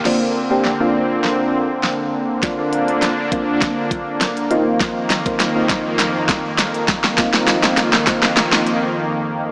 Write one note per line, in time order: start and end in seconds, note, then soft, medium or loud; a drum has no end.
0.05 4.47 D3 medium
0.05 0.39 A#3 medium
0.05 9.52 A#3 medium
0.05 0.39 C4 medium
0.05 2.41 C4 medium
0.05 0.39 D4 medium
0.05 0.39 F4 medium
0.05 snare soft
0.05 crash medium
0.50 0.72 A#3 medium
0.50 0.72 C4 medium
0.50 0.73 D4 medium
0.50 0.73 G4 medium
0.65 snare medium
0.80 1.69 A#3 medium
0.80 1.69 C4 medium
0.80 1.70 D4 medium
0.80 1.70 F4 medium
1.24 snare medium
1.83 snare medium
2.42 2.55 A#3 medium
2.42 2.55 C4 medium
2.42 4.49 D4 medium
2.42 2.55 D4 medium
2.42 2.55 F4 loud
2.42 kick loud
2.42 snare medium
2.42 closed hi-hat medium
2.58 3.14 A#3 medium
2.58 3.14 C4 medium
2.58 3.14 D4 medium
2.58 3.14 F4 medium
2.73 closed hi-hat medium
2.88 closed hi-hat medium
3.02 snare medium
3.02 closed hi-hat loud
3.32 4.21 A#3 medium
3.32 4.21 C4 medium
3.32 4.21 D4 medium
3.32 4.21 F4 medium
3.32 kick medium
3.32 closed hi-hat medium
3.62 kick loud
3.62 snare medium
3.62 closed hi-hat medium
3.91 kick medium
3.91 closed hi-hat medium
4.21 snare medium
4.21 closed hi-hat medium
4.37 closed hi-hat soft
4.50 9.52 F2 medium
4.50 6.86 D#3 medium
4.50 5.10 A#3 medium
4.50 5.10 C4 medium
4.50 5.10 D#4 medium
4.50 5.10 F4 loud
4.50 closed hi-hat medium
4.81 kick loud
4.81 snare medium
4.81 closed hi-hat medium
5.10 snare medium
5.10 closed hi-hat medium
5.26 5.48 A#3 medium
5.26 5.48 C4 medium
5.26 5.48 D#4 medium
5.26 5.48 F4 medium
5.26 kick medium
5.26 closed hi-hat medium
5.40 snare medium
5.40 closed hi-hat loud
5.55 6.45 A#3 medium
5.55 6.45 C4 medium
5.55 6.45 D#4 medium
5.55 6.45 F4 loud
5.69 kick medium
5.69 snare medium
5.69 closed hi-hat medium
5.99 snare medium
5.99 closed hi-hat loud
6.29 kick medium
6.29 snare medium
6.29 closed hi-hat medium
6.59 snare loud
6.59 closed hi-hat medium
6.74 closed hi-hat medium
6.88 9.52 D#3 medium
6.88 kick medium
6.88 snare loud
6.88 closed hi-hat medium
7.04 snare loud
7.18 7.30 A#3 medium
7.18 7.30 C4 medium
7.18 7.30 D#4 medium
7.18 7.30 F4 loud
7.18 kick loud
7.18 snare loud
7.18 closed hi-hat medium
7.33 7.89 A#3 medium
7.33 7.89 C4 medium
7.33 7.89 D#4 medium
7.33 7.89 F4 loud
7.33 snare loud
7.48 snare loud
7.48 closed hi-hat medium
7.63 snare loud
7.63 closed hi-hat medium
7.77 snare loud
7.77 closed hi-hat loud
7.93 snare loud
8.07 8.96 A#3 medium
8.07 8.96 C4 medium
8.07 8.96 D#4 medium
8.07 8.96 F4 loud
8.07 kick medium
8.07 snare loud
8.07 closed hi-hat medium
8.23 snare loud
8.37 snare loud
8.37 closed hi-hat loud
8.53 snare loud
8.67 closed hi-hat medium